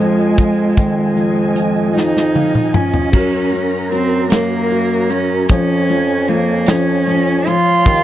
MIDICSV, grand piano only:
0, 0, Header, 1, 2, 480
1, 0, Start_track
1, 0, Tempo, 786576
1, 475, Time_signature, 6, 3, 24, 8
1, 4903, End_track
2, 0, Start_track
2, 0, Title_t, "Grand piano"
2, 0, Program_c, 0, 0
2, 0, Control_c, 0, 64, 127
2, 0, Note_on_c, 0, 53, 45
2, 223, Note_off_c, 0, 53, 0
2, 232, Note_on_c, 0, 53, 41
2, 471, Note_on_c, 0, 51, 48
2, 696, Note_off_c, 0, 53, 0
2, 705, Note_on_c, 0, 53, 42
2, 938, Note_off_c, 0, 53, 0
2, 947, Note_on_c, 0, 53, 42
2, 1186, Note_off_c, 0, 53, 0
2, 1195, Note_on_c, 0, 53, 43
2, 1429, Note_off_c, 0, 53, 0
2, 1435, Note_on_c, 0, 77, 46
2, 1438, Note_on_c, 0, 53, 42
2, 1659, Note_off_c, 0, 77, 0
2, 1662, Note_off_c, 0, 53, 0
2, 1671, Note_on_c, 0, 53, 40
2, 1671, Note_on_c, 0, 80, 50
2, 1889, Note_off_c, 0, 51, 0
2, 1897, Note_off_c, 0, 80, 0
2, 1906, Note_off_c, 0, 53, 0
2, 1912, Note_on_c, 0, 54, 55
2, 1924, Control_c, 0, 64, 0
2, 2021, Control_c, 0, 64, 127
2, 2142, Note_off_c, 0, 54, 0
2, 2151, Note_on_c, 0, 54, 41
2, 2383, Note_off_c, 0, 54, 0
2, 2392, Note_on_c, 0, 54, 42
2, 2625, Note_off_c, 0, 54, 0
2, 2634, Note_on_c, 0, 54, 46
2, 2866, Note_off_c, 0, 54, 0
2, 2875, Note_on_c, 0, 54, 48
2, 3107, Note_off_c, 0, 54, 0
2, 3116, Note_on_c, 0, 54, 46
2, 3349, Note_off_c, 0, 54, 0
2, 3360, Note_on_c, 0, 53, 56
2, 3364, Control_c, 0, 64, 0
2, 3474, Control_c, 0, 64, 127
2, 3590, Note_off_c, 0, 53, 0
2, 3599, Note_on_c, 0, 53, 45
2, 3827, Note_off_c, 0, 53, 0
2, 3836, Note_on_c, 0, 53, 42
2, 4066, Note_off_c, 0, 53, 0
2, 4075, Note_on_c, 0, 53, 49
2, 4307, Note_off_c, 0, 53, 0
2, 4317, Note_on_c, 0, 53, 50
2, 4552, Note_off_c, 0, 53, 0
2, 4561, Note_on_c, 0, 53, 48
2, 4792, Note_off_c, 0, 53, 0
2, 4795, Note_on_c, 0, 51, 61
2, 4807, Control_c, 0, 64, 0
2, 4903, Note_off_c, 0, 51, 0
2, 4903, End_track
0, 0, End_of_file